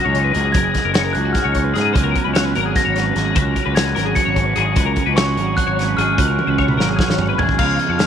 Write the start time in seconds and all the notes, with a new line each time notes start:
Already playing: F#2 F#3 D#4 A#6
0.04 C#2 G#4 C#5
0.14 C#3 D#4, closed hi-hat
0.24 B4
0.33 C#2 F#4 G#4, closed hi-hat
0.44 G#4
0.52 F#1 F#2 G#4 A#4 G#6, kick, closed hi-hat
0.64 G#4
0.74 D#4, kick, snare, closed hi-hat
0.85 F#1 A#4
0.94 G#4 C#5, snare, closed hi-hat
1.04 A#4
1.13 C#2 F#3 G#4 F#6, closed hi-hat
1.17 D#4
1.25 F#4
1.33 G#4 F6, kick, snare, closed hi-hat
1.44 C#2 C#5
1.55 C#3 D#4, kick, closed hi-hat
1.64 B4
1.74 G#2 G#4, snare, closed hi-hat
1.93 C#2 C#3 F#3 B4, kick, closed hi-hat
1.97 B3 C#4 F#4
2.03 A#4
2.15 C#4, kick, closed hi-hat
2.24 C#2 B4
2.34 F#4 C#5 F#6, snare, closed hi-hat
2.45 B4
2.55 G#1 F#3 C#4 A#4, closed hi-hat
2.65 G#4
2.75 F#4 A#6, kick, snare, closed hi-hat
2.85 G#1 C#5
2.96 G#2 C#4, snare, closed hi-hat
3.05 B4
3.15 G#1 F#4 G#4, snare, closed hi-hat
3.35 C#2 C#3 F#4 B4, kick, closed hi-hat
3.45 A#4
3.56 C#4, kick, closed hi-hat
3.66 C#2 B4
3.74 F#4 C#5 G#6, snare, closed hi-hat
3.85 B4
3.95 G#1 F#3 C#4 A#4, snare, closed hi-hat
4.05 G#4
4.15 F#4 C#7, kick, closed hi-hat
4.25 G#1 C#5
4.36 G#2 C#4, kick, closed hi-hat
4.46 B4
4.56 G#1 F#4 G#4, closed hi-hat
4.75 C#2 C#3 F#4 B4, kick, closed hi-hat
4.86 A#4
4.96 C#4, kick, closed hi-hat
5.06 C#2 B4
5.16 F#4 C#5 C#6, snare, closed hi-hat
5.26 B4
5.36 G#1 F#3 C#4 A#4, closed hi-hat
5.47 G#4
5.57 F#4 F#6, kick, closed hi-hat
5.67 G#1 C#5
5.78 G#2 C#4, snare, closed hi-hat
5.88 B4
5.97 G#1 F#4 G#4 F6, closed hi-hat
6.17 C#2 C#3 F#4 B4 F#6, kick, closed hi-hat
6.27 A#4
6.38 C#4, high tom
6.47 C#2 B4
6.58 F#4 C#5, kick
6.68 B4, mid tom
6.77 G#1 F#3 C#4 A#4, snare
6.88 G#4
6.99 F#4, kick, snare
7.08 G#1 C#5, snare
7.19 G#2 C#4, mid tom
7.29 B4
7.38 G#1 F#4 G#4 G#6, floor tom
7.49 kick
7.58 C#2 C#3 F3 B3 F4 G#4 F5 F6, kick, crash
7.79 G#4 D#5, closed hi-hat
7.89 F2 F5
7.98 B3 C#5 F6, snare, closed hi-hat